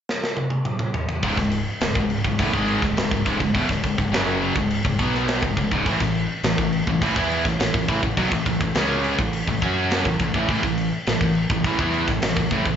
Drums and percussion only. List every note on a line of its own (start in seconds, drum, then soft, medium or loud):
0.09 snare medium
0.24 snare medium
0.37 high tom medium
0.50 high tom medium
0.65 mid tom medium
0.79 mid tom medium
0.94 floor tom loud
1.09 floor tom medium
1.23 kick loud
1.23 crash medium
1.37 kick medium
1.37 snare soft
1.51 crash medium
1.81 snare loud
1.81 crash medium
1.95 kick medium
2.10 crash medium
2.24 kick medium
2.39 kick loud
2.39 crash medium
2.53 kick medium
2.68 crash medium
2.82 kick medium
2.82 snare soft
2.97 snare loud
2.97 crash medium
3.11 kick medium
3.26 kick medium
3.26 crash medium
3.40 kick medium
3.55 kick medium
3.55 crash medium
3.69 kick medium
3.69 snare soft
3.84 kick medium
3.84 crash medium
3.98 kick medium
4.13 snare loud
4.13 crash medium
4.42 crash medium
4.56 kick medium
4.70 crash medium
4.85 kick medium
4.99 kick medium
4.99 crash medium
5.14 snare soft
5.28 snare loud
5.28 crash medium
5.43 kick medium
5.57 kick medium
5.57 crash medium
5.72 kick medium
5.86 kick loud
5.86 crash medium
6.00 kick medium
6.00 snare soft
6.15 crash medium
6.43 snare loud
6.43 crash medium
6.58 kick medium
6.73 crash medium
6.87 kick medium
7.02 kick loud
7.02 crash medium
7.16 kick medium
7.31 crash medium
7.45 kick medium
7.45 snare soft
7.60 snare loud
7.60 crash medium
7.74 kick medium
7.88 kick medium
7.88 crash medium
8.03 kick medium
8.17 kick medium
8.17 crash medium
8.32 kick medium
8.46 kick medium
8.46 crash medium
8.61 kick medium
8.75 snare loud
8.75 crash medium
9.04 crash medium
9.19 kick loud
9.33 crash medium
9.48 kick medium
9.62 kick medium
9.62 crash medium
9.91 snare loud
9.91 crash medium
10.05 kick medium
10.19 kick medium
10.19 crash medium
10.34 kick medium
10.49 kick medium
10.49 crash medium
10.63 kick medium
10.78 crash medium
11.07 snare loud
11.07 crash medium
11.21 kick medium
11.35 crash medium
11.50 kick loud
11.64 kick loud
11.64 crash medium
11.79 kick medium
11.94 crash medium
12.08 kick medium
12.08 snare soft
12.22 snare loud
12.22 crash medium
12.37 kick medium
12.51 kick medium
12.51 crash medium
12.65 kick medium